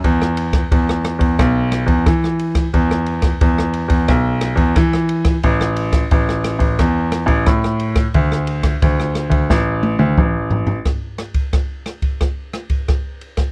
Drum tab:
RD |x-xxx-xxx-xxx-xx|x-xxx-xxx-xxx-xx|x-xxx-xxx-xxx-xx|x-xxx-xx--------|
SD |-r-r-rr-r-r-rr-r|-r-r-r--r-r-rr-r|-r-r-rr-r-r-rr-r|-r-r-rr-o-------|
T1 |----------------|----------------|----------------|----------oo----|
T2 |----------------|----------------|----------------|------------o---|
FT |----------------|----------------|----------------|--------------oo|
BD |o--oo--oo--oo--o|o--oo--oo--oo--o|o--oo--oo--oo--o|o--oo--oo---o---|

RD |x-xxx-xxx-xxx-xx|
SD |r-r-r-r-r-r-r--r|
T1 |----------------|
T2 |----------------|
FT |----------------|
BD |o--oo--oo--oo--o|